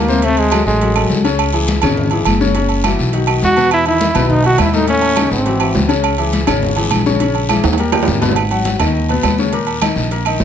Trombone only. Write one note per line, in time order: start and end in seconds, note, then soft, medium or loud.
0.00 0.25 A#3 medium
0.24 0.40 A3 loud
0.38 0.66 G#3 medium
0.67 1.21 G#3 medium
3.44 3.71 F#4 loud
3.73 3.86 E4 loud
3.88 4.32 E4 loud
4.31 4.45 D#4 loud
4.46 4.59 F#4 loud
4.61 4.77 E4 medium
4.75 4.89 D#4 loud
4.89 5.29 C#4 loud
5.33 5.86 C4 medium